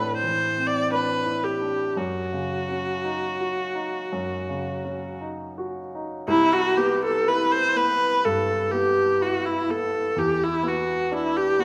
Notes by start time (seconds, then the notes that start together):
Already playing: A2 E3 C4 D4 E4 B4
0.17 C5
0.24 E3
0.57 C4
0.67 D5
0.91 D4 B4
1.25 E4
1.44 G4
1.61 D4
1.97 F#2 F#4
2.33 C#3
2.69 C#4
3.04 D#4
3.40 F#4
3.75 D#4
4.12 F#2
4.49 C#3
4.85 C#4
5.21 D#4
5.58 F#4
5.95 D#4
6.28 C2 E4
6.53 F#4
6.77 B3 G4
7.05 A4
7.28 E4 B4
7.52 C5
7.76 B3 B4
8.25 G2 A4
8.72 B3 G4
9.21 E4 F#4
9.46 E4
9.69 B3 A4
10.16 E2 G4
10.44 E4
10.63 B3
10.68 F#4
11.11 D4 E4
11.37 G4
11.59 B3 F#4